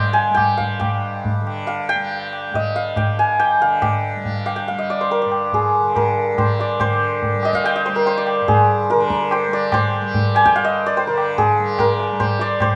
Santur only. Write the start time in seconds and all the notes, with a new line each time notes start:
Already playing: C5 D#5 F5 G5 A#5
0.13 G#5
0.34 G5
0.57 F5
0.80 G5
1.67 F5
1.89 G5
2.55 D#5
2.76 F5
2.97 G5
3.19 G#5
3.40 G5
3.62 F5
3.82 G5
4.46 F5
4.56 G5
4.68 F5
4.79 D#5
4.90 D5
5.01 C5
5.11 A#4
5.22 D5
5.54 G#4
5.96 A#4
6.38 C5
6.60 D5
6.81 C5
7.45 D#5
7.55 F5
7.66 G5
7.76 D#5
7.86 C5
7.96 A#4
8.07 C5
8.18 D5
8.48 G#4
8.91 A#4
9.32 C5
9.53 D5
9.74 C5
10.36 G#5
10.45 G5
10.56 F5
10.64 D#5
10.86 D5
10.97 C5
11.07 A#4
11.38 G#4
11.80 A#4
12.20 C5
12.41 D5
12.62 C5